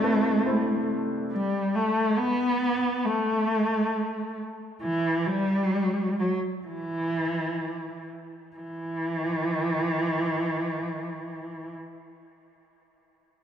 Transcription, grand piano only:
Already playing: C2 C3 A3 C4 E4 C5 D5
0.02 A3 C4 E4 B4
0.45 A3 C4 E4 C5

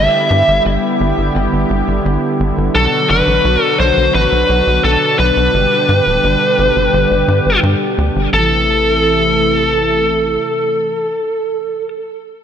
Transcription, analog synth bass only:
0.31 G2
0.48 G1
0.66 G1
1.01 G1
1.18 G1
1.35 G1
1.53 G1
1.70 G1
1.88 G1
2.05 G1
2.40 G1
2.58 G1
2.75 B1
3.10 F#1
3.27 A1
3.45 B1
3.79 B1
3.97 B1
4.15 A1
4.32 B1
4.49 B1
4.67 B1
4.84 B1
5.19 B1
5.37 B1
5.54 G1
5.89 G2
6.06 D1
6.24 G1
6.59 G1
6.76 G1
6.93 G1
7.11 G1
7.28 G2
7.46 G1
7.63 G2
7.98 D2
8.16 G1
8.33 A1

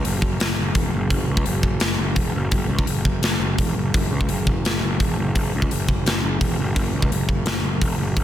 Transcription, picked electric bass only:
0.05 F#1
0.41 F#1
0.59 F#1
0.75 E1
0.94 F#1
1.11 F#1
1.28 C#2
1.46 F#1
1.81 F#1
1.99 F#1
2.17 E1
2.35 F#1
2.53 F#1
2.68 C#2
2.87 F#1
3.22 F#1
3.40 F#1
3.58 E1
3.76 F#1
3.94 F#1
4.12 C#2
4.29 F#1
4.65 F#1
4.83 F#1
5.01 E1
5.19 F#1
5.36 F#1
5.55 C#2
5.73 F#1
6.06 F#1
6.23 F#1
6.41 E1
6.59 F#1
6.76 F#1
6.94 C#2
7.12 F#1
7.47 F#1
7.63 F#1
7.82 E1
7.98 F#1
8.17 F#1

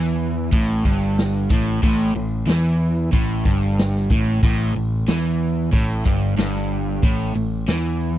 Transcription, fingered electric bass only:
Already playing: E2
0.52 A1
0.85 G1
1.50 A1
1.83 A1
2.15 A1
2.48 E2
3.13 A1
3.45 G1
4.10 A1
4.43 A1
4.76 A1
5.08 E2
5.73 A1
6.06 G1
6.38 G1
7.03 A1
7.36 A1
7.68 E2

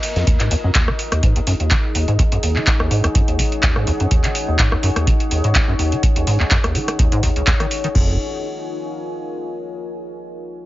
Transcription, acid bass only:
0.16 F2
0.27 D#2
0.40 G#2
0.51 D#2
0.64 F#2
0.75 D#2
0.88 F#3
1.12 D#2
1.23 G#2
1.36 D#2
1.47 F#2
1.60 D#2
1.71 F#3
1.95 D#2
2.08 G#2
2.19 D#2
2.32 F#2
2.43 D#2
2.56 F#3
2.80 D#2
2.91 G#2
3.04 D#2
3.15 F#2
3.28 D#2
3.39 F#3
3.63 D#2
3.76 G#2
3.87 D#2
4.00 F#2
4.11 D#2
4.24 F#3
4.48 D#2
4.59 G#2
4.72 D#2
4.83 F#2
4.96 D#2
5.07 F#3
5.31 D#2
5.44 G#2
5.55 D#2
5.68 F#2
5.79 D#2
5.92 F#3
6.16 D#2
6.27 G#2
6.40 D#2
6.51 F#2
6.64 D#2
6.75 F#3
6.99 D#2
7.12 G#2
7.23 D#2
7.36 C#2
7.47 D#2
7.60 D#3
7.84 D#3
7.95 F2

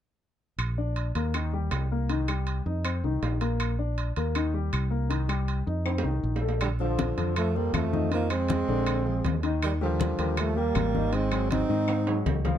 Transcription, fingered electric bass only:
0.58 A#1
1.15 D#2
1.71 C2
2.66 F2
3.04 C2
3.22 A#1
4.17 D#2
4.73 C2
5.67 F2
6.04 C2
6.23 A#1
7.17 F2
7.74 F2
8.68 A#1
9.24 D#2
10.19 D#2
10.75 G#1
11.69 G#2
12.26 C#2

